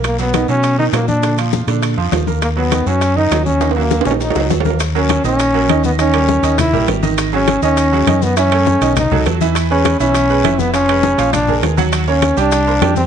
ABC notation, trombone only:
X:1
M:4/4
L:1/8
Q:1/4=202
K:Ebm
V:1 name="Trombone"
^A, =B,2 ^C2 ^D A, =D- | =D z6 z | B, C2 D2 E2 D- | D B,2 D E2 z2 |
z D2 D4 C | D4 _F2 z2 | z D2 D4 C | ^C4 ^D2 z2 |
z D2 D4 =B, | D4 =D2 z2 | z D2 =D4 =C |]